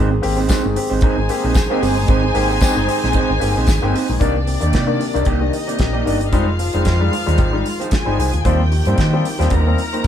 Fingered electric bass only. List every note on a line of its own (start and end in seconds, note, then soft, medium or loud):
0.00 0.19 G#1 loud
0.24 0.46 G#1 loud
0.65 0.75 G1 medium
0.91 1.01 G#1 medium
1.18 1.27 G#1 loud
1.44 1.54 A#1 loud
1.83 2.05 G1 loud
2.09 2.31 G#1 loud
2.35 2.58 G#1 loud
2.77 2.87 G1 medium
3.04 3.13 A#1 medium
3.30 3.40 G#1 medium
3.42 3.54 G1 loud
3.56 3.66 A#1 loud
3.68 3.80 G#1 loud
3.83 3.92 G1 medium
4.09 4.19 A#1 medium
4.21 4.56 C2 loud
4.62 4.72 D#2 medium
4.74 4.96 C3 medium
5.15 5.25 C2 medium
5.27 5.49 C2 medium
5.80 6.02 A#1 medium
6.07 6.33 G1 medium
6.33 6.68 F1 medium
6.74 6.84 F1 medium
6.86 7.08 F2 medium
7.27 7.37 D#2 medium
7.39 7.61 G#1 medium
8.07 8.17 G1 medium
8.19 8.31 C2 medium
8.33 8.43 D2 medium
8.45 8.80 D#2 medium
8.86 8.96 G2 medium
8.99 9.21 D#3 medium
9.40 9.50 D#2 medium
9.51 9.74 D#2 medium